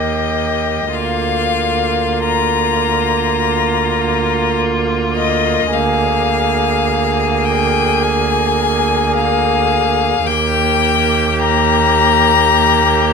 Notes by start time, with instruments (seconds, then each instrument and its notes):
Already playing: cello D#2, viola A#3, violin G4 D#5
0.93 cello D2, viola A#3, violin F4 F5
2.26 violin A#5
5.17 violin D#5
5.72 cello D2, viola A#3, violin G#4 F5
7.45 violin G5
8.03 violin G#5
9.17 violin F5
10.26 cello D#2, viola A#3, violin G4 G5
11.39 violin A#5